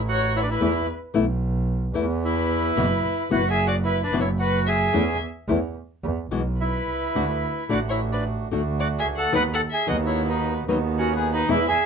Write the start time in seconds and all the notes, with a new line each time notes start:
Already playing: A1
0.09 F#4 C#5
0.36 E4 C#5
0.42 D4 B4
0.50 E4 B4
0.60 E2 E3 A3 B3 E4
1.14 B1 E3 A3 B3 E4
1.94 E2 E3 A3 B3 E4
2.25 E4 B4
2.77 F#1 B2 E3 B3 E4 F#4
3.31 F#1 B2 E3 B3 E4 F#4 B4
3.50 G#4 E5
3.67 F#4 D5
3.85 E4 B4
4.03 D4 B4
4.12 F#1 B2 E3 B3 E4 F#4
4.21 E4 C#5
4.39 F#4 B4
4.66 G#4 E5
4.93 E2 E3 A3 C#4 E4
5.48 E2 E3 A3 C#4 E4
6.03 E2
6.31 B1 B2 E3 G#3 B3 F#4
6.58 E4 B4
6.87 C2
7.15 D2 D3 A3 D4 F#4
7.69 A1 D3 A3 D4 F#4 D5
7.89 E4 C#5
8.12 D4 B4
8.51 D2 D3 A3 D4 F#4
8.80 F#4 D5
8.99 G#4 E5
9.07 C#2
9.17 A4 F#5
9.32 D#2 D#3 F#3 B3 D#4 F#4 B4 F#5
9.54 A4 F#5
9.71 G#4 E5
9.87 D#2 D#3 F#3 B3 D#4 F#4 B4 D#5
10.06 E4 C#5
10.29 D#4 B4
10.67 D#2 D#3 F#3 B3 D#4 F#4 B4
10.98 C#4 F#4
11.15 B3 G#4
11.34 D#4 B4
11.48 E2 B2 E3 G#3 B3 E4 G#4 B4
11.68 G#4 E5